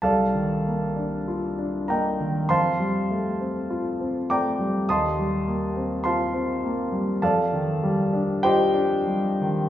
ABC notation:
X:1
M:4/4
L:1/16
Q:1/4=50
K:Cdor
V:1 name="Grand piano"
[Adfa]6 [Begb]2 [cfac']6 [dgbd']2 | [eac'e']4 [cfac']4 [Adfa]4 [Gceg]4 |]
V:2 name="Grand piano"
C,, E, B, D F D B, E, F,, G, A, C F C A, G, | E,, G, B, C F C B, G, F,, E, G, D F D G, E, |]